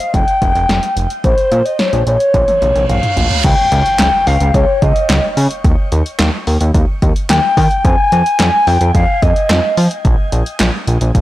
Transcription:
Already playing: F5
0.00 closed hi-hat
0.14 F1 G5, kick, closed hi-hat
0.28 closed hi-hat
0.42 F1, kick, closed hi-hat
0.55 F1, closed hi-hat
0.69 F1, snare, closed hi-hat
0.83 closed hi-hat
0.96 F1, closed hi-hat
1.10 closed hi-hat
1.24 A#1 C5, kick, closed hi-hat
1.38 closed hi-hat
1.52 A#2, closed hi-hat
1.65 D#5, closed hi-hat
1.79 C#5, snare, closed hi-hat
1.93 A#1, closed hi-hat
2.07 A#1 C#5, closed hi-hat
2.20 closed hi-hat
2.34 A#1, kick, closed hi-hat, high tom, reverse cymbal
2.48 closed hi-hat, high tom
2.62 A#1, closed hi-hat, mid tom
2.75 A#1, closed hi-hat, mid tom
2.89 A#1 F5, closed hi-hat, mid tom
3.03 closed hi-hat, mid tom
3.17 A#1, closed hi-hat, floor tom
3.30 closed hi-hat, floor tom
3.44 C#2 G5, kick, closed hi-hat, crash, impact
3.72 C#2, closed hi-hat
3.86 closed hi-hat
3.99 C#2, snare, clap, closed hi-hat
4.27 C#2 F5, open hi-hat
4.40 C#2, closed hi-hat
4.54 C#2 C#5, kick, closed hi-hat
4.82 C#2 D#5, kick, closed hi-hat
4.96 closed hi-hat
5.09 C#2, snare, clap, closed hi-hat
5.37 C#3, open hi-hat
5.51 closed hi-hat
5.64 D#2, kick, closed hi-hat
5.92 D#2, closed hi-hat
6.06 closed hi-hat
6.19 D#2, snare, clap, closed hi-hat
6.47 D#2, open hi-hat
6.61 D#2, closed hi-hat
6.74 D#2, kick, closed hi-hat
7.02 D#2, kick, closed hi-hat
7.16 closed hi-hat
7.30 D#2 G5, snare, clap, closed hi-hat
7.57 D#3, kick, open hi-hat
7.71 closed hi-hat
7.85 F2 G#5, kick, closed hi-hat
8.12 F2, closed hi-hat
8.26 closed hi-hat
8.40 F2, snare, clap, closed hi-hat
8.67 F2 G5, open hi-hat
8.81 F2, closed hi-hat
8.95 F2 F5, kick, closed hi-hat
9.22 F2 D#5, kick, closed hi-hat
9.36 closed hi-hat
9.50 F2, snare, clap, closed hi-hat
9.77 F3, open hi-hat
9.91 closed hi-hat
10.05 A#1, kick, closed hi-hat
10.32 A#1, closed hi-hat
10.46 closed hi-hat
10.60 A#1, snare, clap, closed hi-hat
10.87 A#1, closed hi-hat
11.01 A#1, closed hi-hat
11.15 A#1, kick, closed hi-hat

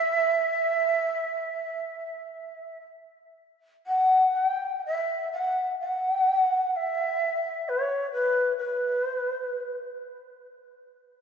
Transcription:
Already playing: E5
3.86 F#5
4.35 G5
4.86 E5
5.32 F#5
5.80 F#5
6.76 E5
7.68 C#5
8.12 B4
8.58 B4
9.04 C5
9.17 B4
9.30 C5
9.43 B4

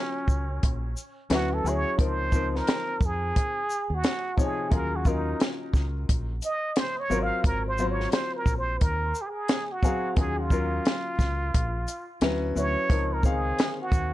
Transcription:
Already playing: F#3 C#4 F4 A#4
0.28 C#2, kick, shaker
0.63 A#1, kick, closed hi-hat
0.97 shaker
1.30 D2 F#3 C#4 E4 F#4 B4, snare, closed hi-hat
1.54 A4
1.64 D2 F#3 C#4 E4 G#4 C#5, shaker
1.98 C#2 F3 C4 D#4 A#4, kick, closed hi-hat
2.02 C5
2.32 F3 C4 D#4 A#4, kick, shaker
2.56 A#4, snare
2.67 snare, closed hi-hat
3.00 F2, kick, shaker
3.05 G#4
3.36 kick, closed hi-hat
3.70 shaker
3.90 D#2
3.94 F#4
4.04 snare, closed hi-hat
4.37 C3 F3 D#4 C#5, kick, shaker
4.42 G#4
4.70 D#2 F#3 C#4 F4 G#4, kick, closed hi-hat
4.75 A#4
4.96 F#4
5.05 F#3 C#4 D#4 F4 A#4, kick, shaker
5.40 snare, closed hi-hat
5.73 C#2, kick, snare, shaker
6.09 A#1, kick, closed hi-hat
6.42 D#5, closed hi-hat, shaker
6.76 C5, snare, closed hi-hat
7.00 C#5
7.10 G#1 F#3 C4 F4 A#4, shaker
7.23 F5
7.44 G#1 A#4, kick, closed hi-hat
7.67 C5
7.78 F#3 C4 F4 C5, shaker
7.91 C#5
8.00 snare
8.12 C5, snare, closed hi-hat
8.36 A#4
8.46 A#1, kick, closed hi-hat, shaker
8.58 C5
8.81 D#2 A#4, kick, closed hi-hat
9.15 shaker
9.21 G4
9.26 G#4
9.48 snare, closed hi-hat
9.72 F#4
9.83 F#3 C4 G#4 F5, kick, shaker
10.16 D#2 F#3 C#4 F4 G#4, kick, closed hi-hat
10.40 F4
10.50 F#3 C#4 F4 A#4, kick, shaker
10.85 snare, closed hi-hat
11.19 C#2, kick, snare, closed hi-hat, shaker
11.54 A#1, kick, closed hi-hat
11.88 closed hi-hat, shaker
12.21 D2 F#3 C#4 E4 B4, snare, closed hi-hat
12.55 D2 F#3 C#4 E4 B4 C#5, shaker
12.89 C#2 F3 C4 D#4 A#4, kick, closed hi-hat
13.13 A#4
13.23 D#3 C4 D#4 G#4 F5, kick, shaker
13.59 snare, closed hi-hat
13.81 F#4
13.92 D#2, kick, closed hi-hat, shaker

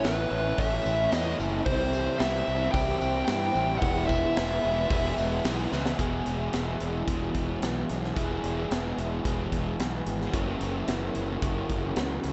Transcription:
Already playing: A2
0.03 A1 E3 A3 C#4 E4 B4, snare, open hi-hat, tambourine
0.30 A1 A3 C#4 E4, tambourine
0.57 A1 A2 E3 A3 C#4 E4 E5, kick, open hi-hat, tambourine
0.85 A1 A3 C#4 E4, tambourine
1.12 E2 E3 A3 C#4 E4 D#5, snare, open hi-hat, tambourine
1.38 F#1 A3 C#4 E4, tambourine
1.65 C2 C3 E3 G3 C4 E4 C5, kick, open hi-hat, tambourine
1.92 G3 C4 E4, tambourine
2.18 C2 E3 G3 C4 E4 E5, snare, open hi-hat, tambourine
2.47 C2 G3 C4 E4, tambourine
2.72 C2 C3 E3 G3 C4 E4 G5, kick, open hi-hat, tambourine
3.00 C2 G3 C4 E4, tambourine
3.25 G2 E3 G3 C4 G5, snare, open hi-hat, tambourine
3.29 E4
3.54 A1 G3 C4 E4, tambourine
3.78 E2 F#5
3.82 E1 B2 E3 G#3 B3 E4, kick, open hi-hat
4.06 E3 G#3 B3 E4 E5, kick, tambourine
4.35 E1 E3 G#3 B3 E4, snare, open hi-hat, tambourine
4.62 E1 E3 G#3 B3 E4, tambourine
4.89 E1 E2 B2 E3 G#3 B3 E4, kick, open hi-hat, tambourine
5.16 E1 E3 G#3 B3 E4, tambourine
5.43 B1 E3 G#3 B3 E4, snare, open hi-hat, tambourine
5.71 C#2 E3 G#3 B3 E4, snare, tambourine
5.86 snare
5.98 E1 E2 B2 E3 G#3 B3 E4 G#4, kick, closed hi-hat
6.26 E1, closed hi-hat
6.53 E1, snare, closed hi-hat
6.80 E1, closed hi-hat
7.07 E1 E2 B2 E3 G#3 B3 G#4, kick, closed hi-hat
7.35 E1, kick, closed hi-hat
7.62 B1, snare, closed hi-hat
7.89 B1, snare, closed hi-hat
8.04 snare
8.14 E1 E2 B2 E3 G#3 B3 E4 G#4, kick, closed hi-hat
8.43 E1, closed hi-hat
8.71 E1, snare, closed hi-hat
8.98 E1, closed hi-hat
9.23 E1 E2 B2 E3 G#3 B3 G#4, kick, closed hi-hat
9.52 E1, kick, closed hi-hat
9.79 B1, snare, closed hi-hat
10.06 G#1, closed hi-hat
10.21 snare
10.32 F#1 F#2 C#3 E3 F#3 A#3 C#4 E4 F#4 A#4, kick, closed hi-hat
10.61 F#1, closed hi-hat
10.88 F#1, snare, closed hi-hat
11.15 F#1, closed hi-hat
11.41 F#1 F#2 C#3 E3 A#3 C#4 F#4, kick, closed hi-hat
11.70 F#1, kick, closed hi-hat
11.96 C#2, snare, closed hi-hat
12.24 C#2, snare, closed hi-hat

